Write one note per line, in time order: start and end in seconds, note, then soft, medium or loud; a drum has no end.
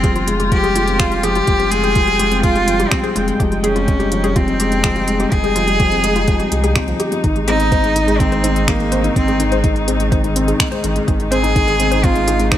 0.00 1.41 F1 loud
0.00 0.03 F3 medium
0.00 0.10 F3 medium
0.00 0.39 G3 medium
0.00 0.24 C4 loud
0.00 3.36 F4 medium
0.00 0.15 G#4 loud
0.00 7.20 G5 medium
0.00 kick loud
0.00 closed hi-hat soft
0.15 0.27 C4 medium
0.15 0.24 F4 medium
0.15 closed hi-hat soft
0.27 0.39 G#3 loud
0.27 closed hi-hat medium
0.39 0.46 G3 medium
0.39 0.48 G4 medium
0.39 closed hi-hat soft
0.51 0.63 F3 medium
0.51 1.00 G4 loud
0.51 kick loud
0.51 closed hi-hat soft
0.63 0.70 G3 medium
0.63 0.75 G#4 medium
0.63 closed hi-hat soft
0.75 0.87 G#3 loud
0.75 0.84 F4 medium
0.75 closed hi-hat medium
0.88 0.95 C4 medium
0.88 closed hi-hat soft
0.99 1.11 G#3 medium
0.99 1.25 F4 loud
0.99 1.08 G4 medium
0.99 finger snap medium
0.99 kick loud
0.99 closed hi-hat soft
1.11 1.23 G3 medium
1.11 closed hi-hat soft
1.23 1.35 F3 medium
1.23 1.72 G4 loud
1.23 1.35 G#4 loud
1.23 closed hi-hat medium
1.35 1.47 G3 medium
1.35 1.44 F4 medium
1.35 closed hi-hat soft
1.47 2.85 F1 loud
1.47 1.54 F3 medium
1.47 kick loud
1.47 closed hi-hat soft
1.59 1.71 C4 medium
1.59 1.68 G4 medium
1.59 closed hi-hat soft
1.70 1.83 G#3 loud
1.70 2.43 G#4 loud
1.70 closed hi-hat medium
1.83 1.90 G3 medium
1.83 1.95 G#4 medium
1.83 closed hi-hat soft
1.95 2.07 F3 medium
1.95 2.04 F4 medium
1.95 kick loud
1.95 closed hi-hat soft
2.07 2.14 G3 medium
2.07 closed hi-hat soft
2.19 2.31 G#3 loud
2.19 2.28 G4 medium
2.19 closed hi-hat medium
2.31 2.38 C4 medium
2.31 closed hi-hat soft
2.43 2.55 G#3 medium
2.43 2.93 F4 loud
2.43 2.55 G#4 loud
2.43 kick loud
2.43 closed hi-hat soft
2.55 2.67 G3 medium
2.55 2.64 F4 medium
2.55 closed hi-hat soft
2.67 2.79 F3 medium
2.67 closed hi-hat medium
2.79 2.91 G3 loud
2.79 2.88 G4 medium
2.79 closed hi-hat soft
2.91 2.98 F3 medium
2.91 3.28 C4 medium
2.91 finger snap medium
2.91 kick loud
2.91 closed hi-hat soft
3.03 3.15 C4 medium
3.03 3.15 G#4 loud
3.03 closed hi-hat soft
3.15 3.31 F1 medium
3.15 3.27 G#3 loud
3.15 3.24 F4 medium
3.15 closed hi-hat medium
3.27 3.34 G3 medium
3.27 closed hi-hat soft
3.39 5.25 F1 loud
3.39 3.51 F3 medium
3.39 12.58 D#4 medium
3.39 3.48 G4 medium
3.39 kick loud
3.39 closed hi-hat soft
3.51 3.58 G3 medium
3.51 closed hi-hat soft
3.63 3.75 G#3 loud
3.63 4.38 C#4 medium
3.63 3.75 G#4 loud
3.63 closed hi-hat medium
3.75 3.82 C4 medium
3.75 3.84 F4 medium
3.75 closed hi-hat soft
3.87 3.99 G#3 medium
3.87 kick medium
3.87 closed hi-hat soft
3.99 4.11 G3 medium
3.99 4.08 G4 medium
3.99 closed hi-hat soft
4.11 4.23 F3 medium
4.11 closed hi-hat medium
4.24 4.35 G3 loud
4.24 4.35 G#4 loud
4.24 closed hi-hat soft
4.35 4.42 F3 medium
4.35 5.34 C4 loud
4.35 4.44 F4 medium
4.35 kick loud
4.35 closed hi-hat soft
4.47 4.59 C4 medium
4.47 closed hi-hat soft
4.59 4.71 G#3 loud
4.59 4.68 G4 medium
4.59 closed hi-hat medium
4.72 4.79 G3 medium
4.72 closed hi-hat soft
4.84 4.95 F3 medium
4.84 4.95 G#4 loud
4.84 finger snap medium
4.84 kick medium
4.84 closed hi-hat soft
4.96 5.03 G3 medium
4.96 5.04 F4 medium
4.96 closed hi-hat soft
5.08 5.19 G#3 loud
5.08 closed hi-hat medium
5.20 5.27 C4 medium
5.20 5.28 G4 medium
5.20 closed hi-hat soft
5.31 6.27 F1 loud
5.31 5.43 G#3 medium
5.31 6.76 G#4 loud
5.31 kick loud
5.31 closed hi-hat soft
5.44 5.55 G3 medium
5.44 5.55 G#4 loud
5.44 closed hi-hat soft
5.55 5.67 F3 medium
5.55 5.64 F4 medium
5.55 closed hi-hat medium
5.67 5.79 G3 loud
5.67 closed hi-hat soft
5.79 5.87 F3 medium
5.79 5.88 G4 medium
5.79 kick loud
5.79 closed hi-hat soft
5.91 6.03 C4 medium
5.91 closed hi-hat soft
6.04 6.15 G#3 loud
6.04 6.15 G#4 loud
6.04 closed hi-hat medium
6.16 6.23 G3 medium
6.16 6.24 F4 medium
6.16 closed hi-hat soft
6.28 6.43 F1 medium
6.28 6.39 F3 medium
6.28 kick loud
6.28 closed hi-hat soft
6.40 6.47 G3 medium
6.40 6.48 G4 medium
6.40 closed hi-hat soft
6.52 6.93 C2 medium
6.52 6.59 G4 medium
6.52 closed hi-hat medium
6.64 6.75 G3 medium
6.64 6.75 G#4 loud
6.64 closed hi-hat soft
6.76 6.83 C4 medium
6.76 6.84 F4 medium
6.76 finger snap medium
6.76 kick loud
6.76 closed hi-hat soft
6.88 6.99 F3 medium
6.88 closed hi-hat soft
7.00 7.08 G4 medium
7.00 7.11 G4 loud
7.00 closed hi-hat medium
7.12 7.23 F3 medium
7.12 closed hi-hat soft
7.23 9.09 G#1 loud
7.23 12.58 C3 medium
7.23 12.58 D#3 medium
7.23 7.35 D#3 medium
7.23 7.32 D#4 medium
7.23 kick loud
7.23 closed hi-hat soft
7.35 7.43 G#3 medium
7.35 closed hi-hat soft
7.47 7.59 C4 loud
7.47 8.21 D#4 loud
7.47 7.56 G#4 medium
7.47 closed hi-hat medium
7.59 7.66 D#4 medium
7.59 closed hi-hat soft
7.72 7.83 C4 medium
7.72 7.83 C5 loud
7.72 kick loud
7.72 closed hi-hat soft
7.83 7.95 G#3 medium
7.83 7.92 D#4 medium
7.83 closed hi-hat soft
7.95 8.07 D#3 medium
7.95 closed hi-hat medium
8.07 8.19 G#3 loud
8.07 8.16 G#4 medium
8.07 closed hi-hat soft
8.19 8.27 D#3 medium
8.19 8.69 C4 loud
8.19 kick loud
8.19 closed hi-hat soft
8.31 8.43 D#4 medium
8.31 8.44 C5 loud
8.31 closed hi-hat soft
8.43 8.55 C4 loud
8.43 8.52 D#4 medium
8.43 closed hi-hat medium
8.55 8.62 G#3 medium
8.55 closed hi-hat soft
8.68 8.79 D#3 medium
8.68 9.15 A#3 medium
8.68 8.76 G#4 medium
8.68 finger snap medium
8.68 kick loud
8.68 closed hi-hat soft
8.79 8.86 G#3 medium
8.79 closed hi-hat soft
8.91 9.03 C4 loud
8.91 9.03 C5 loud
8.91 closed hi-hat medium
9.04 9.11 D#4 medium
9.04 9.12 D#4 medium
9.04 closed hi-hat soft
9.16 10.53 G#1 loud
9.16 9.60 C4 medium
9.16 9.27 C4 medium
9.16 kick loud
9.16 closed hi-hat soft
9.28 9.39 G#3 medium
9.28 9.36 G#4 medium
9.28 closed hi-hat soft
9.40 9.51 D#3 medium
9.40 closed hi-hat medium
9.52 9.63 G#3 medium
9.52 9.63 C5 loud
9.52 closed hi-hat soft
9.64 9.71 D#3 medium
9.64 9.72 D#4 medium
9.64 kick loud
9.64 closed hi-hat soft
9.76 9.87 D#4 medium
9.76 closed hi-hat soft
9.88 9.99 C4 loud
9.88 9.96 G#4 medium
9.88 closed hi-hat medium
10.00 10.07 G#3 medium
10.00 closed hi-hat soft
10.12 10.23 D#3 medium
10.12 10.23 C5 loud
10.12 kick loud
10.12 closed hi-hat soft
10.24 10.31 G#3 medium
10.24 10.32 D#4 medium
10.24 closed hi-hat soft
10.36 10.47 C4 loud
10.36 closed hi-hat medium
10.48 10.55 D#4 medium
10.48 10.56 G#4 medium
10.48 closed hi-hat soft
10.60 10.71 C4 medium
10.60 finger snap medium
10.60 kick loud
10.60 closed hi-hat soft
10.72 10.83 G#3 medium
10.72 10.83 C5 loud
10.72 closed hi-hat soft
10.84 10.99 G#1 medium
10.84 10.95 D#3 medium
10.84 10.92 D#4 medium
10.84 closed hi-hat medium
10.96 11.07 G#3 loud
10.96 closed hi-hat soft
11.07 12.58 G#1 loud
11.07 11.15 D#3 medium
11.07 11.16 G#4 medium
11.07 kick loud
11.07 closed hi-hat soft
11.20 11.31 D#4 medium
11.20 closed hi-hat soft
11.31 11.43 C4 loud
11.31 12.06 G#4 loud
11.31 11.43 C5 loud
11.31 closed hi-hat medium
11.43 11.51 G#3 medium
11.43 11.52 D#4 medium
11.43 closed hi-hat soft
11.55 11.67 D#3 medium
11.55 kick loud
11.55 closed hi-hat soft
11.67 11.74 G#3 medium
11.67 11.76 G#4 medium
11.67 closed hi-hat soft
11.80 11.91 C4 loud
11.80 closed hi-hat medium
11.92 11.99 D#4 medium
11.92 12.03 C5 medium
11.92 closed hi-hat soft
12.03 12.15 C4 medium
12.03 12.12 D#4 medium
12.03 12.52 F4 loud
12.03 kick loud
12.03 closed hi-hat soft
12.16 12.27 G#3 medium
12.16 closed hi-hat soft
12.28 12.39 D#3 medium
12.28 12.36 G#4 medium
12.28 closed hi-hat medium
12.40 12.51 G#3 loud
12.40 closed hi-hat soft
12.52 12.58 D#3 medium
12.52 12.58 D#4 medium
12.52 12.58 C5 loud
12.52 finger snap medium
12.52 kick loud
12.52 closed hi-hat soft